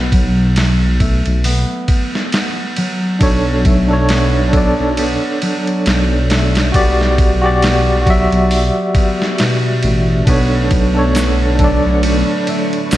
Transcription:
Already playing: B1 A3 B3
0.12 F#3, kick, ride
0.56 snare, ride
1.00 A3, kick, ride
1.26 B1, ride
1.44 B3, open hi-hat
1.88 kick, ride
2.15 snare
2.32 B3, snare, ride
2.76 F#3, ride
3.19 B1 D4 A4 C#5, kick, ride
3.65 A3, kick, ride
3.89 D4 A4
3.93 C#5
4.09 B3, snare, ride
4.49 D4
4.53 A4, kick, ride
4.57 D5
4.80 B1
4.97 B3, ride
5.42 F#3, ride
5.67 ride
5.86 B1, snare, ride
6.30 A3, snare, ride
6.55 snare, ride
6.72 B1 B3 F#4 G4 D5, kick, ride
7.01 snare
7.18 kick, ride
7.42 F#4 G4 D5
7.62 B3, snare, ride
8.02 F#4
8.06 F#3 E5, kick, ride
8.32 B1, ride
8.51 open hi-hat
8.95 B3, kick, ride
9.22 snare
9.38 B2, snare, ride
9.83 A1, ride
10.25 B1 A3 B3 D4 A4 B4 C#6, kick, ride
10.29 C#5
10.71 kick, ride
10.95 D4 A4
10.99 C#5
11.15 B3, snare, ride, shaker
11.56 D4, kick, ride
11.60 F#3 A4
11.64 D5
11.86 B1
12.03 ride
12.47 A3, ride
12.73 ride
12.91 B1 B3, snare, ride, shaker

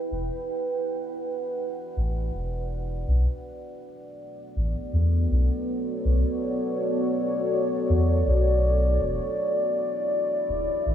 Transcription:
Already playing: E4 B4 D5 F#5 G5
0.11 E1
1.97 A1
2.34 E1
3.08 B1 B3
3.22 F#4
3.36 A4
4.53 A1 C#5
4.93 E2
5.30 B1
6.05 B1
7.90 E2
8.26 B1
9.00 E1 E4
9.65 B4
9.90 F#5
10.49 D1
10.57 G5
10.86 A1

